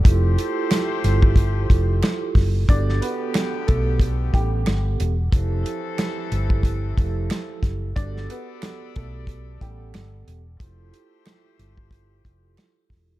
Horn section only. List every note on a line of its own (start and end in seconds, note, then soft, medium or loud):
0.04 2.31 A3 medium
0.04 2.31 G4 medium
0.04 2.31 C5 medium
2.70 4.96 D3 medium
2.70 4.96 B3 medium
2.70 4.96 G4 medium
5.32 7.59 E3 medium
5.32 7.59 C4 medium
5.32 7.59 A4 loud
7.97 10.23 B3 medium
7.97 10.23 A4 medium
7.97 10.23 D5 loud
10.59 12.86 A3 medium
10.59 12.86 G4 medium
10.59 12.86 C5 loud